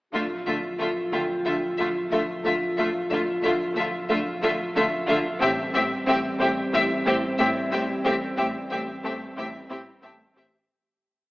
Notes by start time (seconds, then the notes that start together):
0.13 D1 D2 D3 F3 A3 F4 E5
0.46 D2 D3 A3 D4 F4 E5
0.79 D2 D3 A3 D4 F4 E5
1.12 D2 D3 A3 F4 E5 G5
1.45 D2 D3 A3 F4 E5
1.78 D2 D3 A3 F4 E5
2.11 D2 D3 A3 F4 E5
2.44 D2 D3 A3 D4 F4 E5
2.77 D2 D3 A3 F4 E5
3.10 D2 D3 A3 D4 F4 E5
3.43 D2 D3 A3 D4 F4 E5
3.76 D2 D3 A3 F4 E5
4.08 D2 D3 A3 F4 E5
4.42 D2 D3 A3 F4 E5
4.75 D2 D3 A3 F4 E5
5.08 D2 D3 A3 D4 F4 E5
5.41 A1 A2 G3 A3 C4 G4 E5
5.74 A1 A2 C4 G4 E5
6.07 A1 A2 C4 G4 E5
6.40 A1 A2 A3 C4 G4 E5
6.73 A1 A2 C4 E4 G4 E5
7.06 A1 A2 C4 E4 G4 E5
7.39 A1 A2 A3 C4 E4 G4 E5
7.72 A1 A2 C4 G4 E5
8.05 A1 A2 A3 C4 G4 E5
8.38 A1 A2 C4 G4 E5
8.71 A1 A2 C4 G4 E5
9.04 A1 A2 A3 C4 G4 E5
9.37 A1 A2 C4 E4 G4 E5
9.70 A1 A2 C4 E4 G4 E5
10.02 A1 A2 A3 C4 G4 E5 A5
10.35 A1 A2 C4 G4 E5